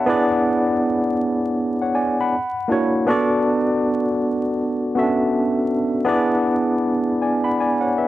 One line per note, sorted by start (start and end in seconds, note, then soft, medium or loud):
0.00 0.29 C#5 soft
0.00 0.11 E5 medium
0.00 0.29 F#5 medium
0.00 0.11 A5 medium
0.00 0.10 B5 medium
0.06 0.84 B3 loud
0.06 0.84 D4 loud
0.06 0.85 E4 medium
0.06 0.85 G#4 medium
0.06 0.86 D5 loud
1.81 1.96 C#5 medium
1.81 1.96 F#5 medium
1.95 2.16 D5 medium
1.95 2.16 G#5 medium
2.20 2.55 F#5 medium
2.20 2.55 B5 medium
2.68 2.97 A#3 medium
2.68 2.98 D4 medium
2.68 2.98 E4 medium
2.68 2.98 F#4 medium
2.68 2.99 C#5 medium
3.07 4.11 B3 loud
3.07 4.11 D4 loud
3.07 4.12 F#4 loud
3.07 4.12 A4 medium
3.07 4.13 D5 loud
4.95 5.72 B3 medium
4.95 5.04 C#4 medium
4.95 5.73 F#4 medium
4.95 5.74 A4 medium
4.95 5.74 E5 medium
5.03 5.76 D4 medium
6.05 6.83 B3 loud
6.05 6.84 D4 medium
6.05 6.84 E4 medium
6.05 6.85 G#4 medium
6.09 6.85 D5 loud
7.22 7.42 D5 medium
7.22 7.42 G#5 medium
7.44 7.59 F#5 soft
7.44 7.59 B5 medium
7.61 7.81 D5 medium
7.61 7.80 G#5 medium
7.81 7.96 C#5 medium
7.81 7.96 F#5 medium
7.98 8.08 B4 medium
7.98 8.08 E5 medium